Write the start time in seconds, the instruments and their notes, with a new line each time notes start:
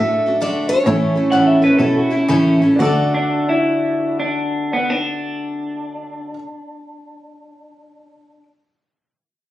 Already playing: steel-string acoustic guitar A3 E5, grand piano D4 F#4 A4
0.00 cello A2, steel-string acoustic guitar D4 F#4 A4
0.26 steel-string acoustic guitar D4 F#4 A4
0.41 steel-string acoustic guitar D3 A3 D4 F#4 A4 D5
0.69 steel-string acoustic guitar D4 F#4 A4 C#5
0.84 steel-string acoustic guitar A2 E3 A3 C#4 E4 A4, cello A2, grand piano C#4 E4 A4
1.16 steel-string acoustic guitar A3 C#4 E4 A4
1.32 steel-string acoustic guitar A2 E3 A3 C#4 E4 A4, clean electric guitar F#5
1.47 clean electric guitar E5
1.62 steel-string acoustic guitar A3 C#4 E4 A4, clean electric guitar B4
1.78 cello B2, steel-string acoustic guitar A3 C#4 E4 A4, clean electric guitar A4
1.96 clean electric guitar F#4
2.10 steel-string acoustic guitar A3 C#4 E4 A4, clean electric guitar E4
2.28 steel-string acoustic guitar A2 E3 A3 C#4 E4 A4, cello C#3, clean electric guitar C#4
2.62 steel-string acoustic guitar A3 C#4 E4 A4
2.76 cello D2, steel-string acoustic guitar D3 D5, grand piano D4 F#4
2.81 steel-string acoustic guitar A3 D4 F#4, grand piano A4
2.85 steel-string acoustic guitar A4
3.14 clean electric guitar D4
3.49 clean electric guitar E4
4.20 clean electric guitar D4
4.73 clean electric guitar B3
4.90 clean electric guitar D4